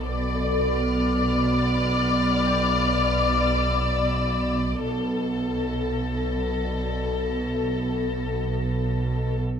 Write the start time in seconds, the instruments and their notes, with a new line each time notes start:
Already playing: harp F#6
0.04 double bass section B1, cello section B2, violin section D5 B5
0.34 harp A4
0.64 violin section F6
2.46 harp G5 G6
3.54 violin section E6
4.84 double bass section B1, cello section B2, violin section A4 A6
5.45 violin section A#6
6.64 harp D5
7.54 harp E5 E6